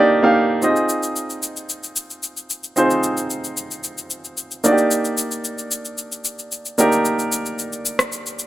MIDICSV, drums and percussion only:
0, 0, Header, 1, 2, 480
1, 0, Start_track
1, 0, Tempo, 535714
1, 559, Time_signature, 4, 2, 24, 8
1, 7588, End_track
2, 0, Start_track
2, 0, Title_t, "Drums"
2, 558, Note_on_c, 9, 82, 74
2, 647, Note_off_c, 9, 82, 0
2, 682, Note_on_c, 9, 82, 50
2, 772, Note_off_c, 9, 82, 0
2, 798, Note_on_c, 9, 82, 85
2, 887, Note_off_c, 9, 82, 0
2, 921, Note_on_c, 9, 82, 56
2, 1011, Note_off_c, 9, 82, 0
2, 1039, Note_on_c, 9, 82, 69
2, 1129, Note_off_c, 9, 82, 0
2, 1163, Note_on_c, 9, 82, 48
2, 1253, Note_off_c, 9, 82, 0
2, 1279, Note_on_c, 9, 82, 83
2, 1368, Note_off_c, 9, 82, 0
2, 1403, Note_on_c, 9, 82, 55
2, 1492, Note_off_c, 9, 82, 0
2, 1517, Note_on_c, 9, 82, 63
2, 1607, Note_off_c, 9, 82, 0
2, 1643, Note_on_c, 9, 82, 55
2, 1733, Note_off_c, 9, 82, 0
2, 1756, Note_on_c, 9, 82, 87
2, 1846, Note_off_c, 9, 82, 0
2, 1884, Note_on_c, 9, 82, 47
2, 1973, Note_off_c, 9, 82, 0
2, 1998, Note_on_c, 9, 82, 65
2, 2087, Note_off_c, 9, 82, 0
2, 2122, Note_on_c, 9, 82, 49
2, 2212, Note_off_c, 9, 82, 0
2, 2239, Note_on_c, 9, 82, 83
2, 2329, Note_off_c, 9, 82, 0
2, 2362, Note_on_c, 9, 82, 53
2, 2451, Note_off_c, 9, 82, 0
2, 2478, Note_on_c, 9, 82, 75
2, 2567, Note_off_c, 9, 82, 0
2, 2602, Note_on_c, 9, 82, 54
2, 2692, Note_off_c, 9, 82, 0
2, 2718, Note_on_c, 9, 82, 83
2, 2808, Note_off_c, 9, 82, 0
2, 2842, Note_on_c, 9, 82, 54
2, 2931, Note_off_c, 9, 82, 0
2, 2959, Note_on_c, 9, 82, 72
2, 3048, Note_off_c, 9, 82, 0
2, 3084, Note_on_c, 9, 82, 50
2, 3173, Note_off_c, 9, 82, 0
2, 3199, Note_on_c, 9, 82, 82
2, 3288, Note_off_c, 9, 82, 0
2, 3324, Note_on_c, 9, 82, 54
2, 3413, Note_off_c, 9, 82, 0
2, 3438, Note_on_c, 9, 82, 65
2, 3527, Note_off_c, 9, 82, 0
2, 3564, Note_on_c, 9, 82, 55
2, 3654, Note_off_c, 9, 82, 0
2, 3677, Note_on_c, 9, 82, 80
2, 3766, Note_off_c, 9, 82, 0
2, 3804, Note_on_c, 9, 82, 47
2, 3894, Note_off_c, 9, 82, 0
2, 3918, Note_on_c, 9, 82, 68
2, 4008, Note_off_c, 9, 82, 0
2, 4043, Note_on_c, 9, 82, 49
2, 4133, Note_off_c, 9, 82, 0
2, 4159, Note_on_c, 9, 82, 84
2, 4249, Note_off_c, 9, 82, 0
2, 4282, Note_on_c, 9, 82, 52
2, 4372, Note_off_c, 9, 82, 0
2, 4398, Note_on_c, 9, 82, 76
2, 4488, Note_off_c, 9, 82, 0
2, 4522, Note_on_c, 9, 82, 54
2, 4612, Note_off_c, 9, 82, 0
2, 4637, Note_on_c, 9, 82, 87
2, 4727, Note_off_c, 9, 82, 0
2, 4761, Note_on_c, 9, 82, 55
2, 4851, Note_off_c, 9, 82, 0
2, 4878, Note_on_c, 9, 82, 72
2, 4968, Note_off_c, 9, 82, 0
2, 5003, Note_on_c, 9, 82, 51
2, 5093, Note_off_c, 9, 82, 0
2, 5118, Note_on_c, 9, 82, 83
2, 5207, Note_off_c, 9, 82, 0
2, 5242, Note_on_c, 9, 82, 55
2, 5332, Note_off_c, 9, 82, 0
2, 5357, Note_on_c, 9, 82, 68
2, 5446, Note_off_c, 9, 82, 0
2, 5483, Note_on_c, 9, 82, 56
2, 5572, Note_off_c, 9, 82, 0
2, 5596, Note_on_c, 9, 82, 80
2, 5686, Note_off_c, 9, 82, 0
2, 5724, Note_on_c, 9, 82, 47
2, 5814, Note_off_c, 9, 82, 0
2, 5839, Note_on_c, 9, 82, 68
2, 5928, Note_off_c, 9, 82, 0
2, 5963, Note_on_c, 9, 82, 50
2, 6053, Note_off_c, 9, 82, 0
2, 6080, Note_on_c, 9, 82, 86
2, 6170, Note_off_c, 9, 82, 0
2, 6202, Note_on_c, 9, 82, 53
2, 6292, Note_off_c, 9, 82, 0
2, 6318, Note_on_c, 9, 82, 76
2, 6408, Note_off_c, 9, 82, 0
2, 6443, Note_on_c, 9, 82, 54
2, 6532, Note_off_c, 9, 82, 0
2, 6558, Note_on_c, 9, 82, 84
2, 6648, Note_off_c, 9, 82, 0
2, 6682, Note_on_c, 9, 82, 53
2, 6771, Note_off_c, 9, 82, 0
2, 6799, Note_on_c, 9, 82, 70
2, 6888, Note_off_c, 9, 82, 0
2, 6923, Note_on_c, 9, 82, 50
2, 7013, Note_off_c, 9, 82, 0
2, 7038, Note_on_c, 9, 82, 85
2, 7128, Note_off_c, 9, 82, 0
2, 7159, Note_on_c, 9, 37, 81
2, 7163, Note_on_c, 9, 82, 55
2, 7249, Note_off_c, 9, 37, 0
2, 7252, Note_off_c, 9, 82, 0
2, 7278, Note_on_c, 9, 82, 64
2, 7368, Note_off_c, 9, 82, 0
2, 7404, Note_on_c, 9, 82, 55
2, 7493, Note_off_c, 9, 82, 0
2, 7517, Note_on_c, 9, 82, 84
2, 7588, Note_off_c, 9, 82, 0
2, 7588, End_track
0, 0, End_of_file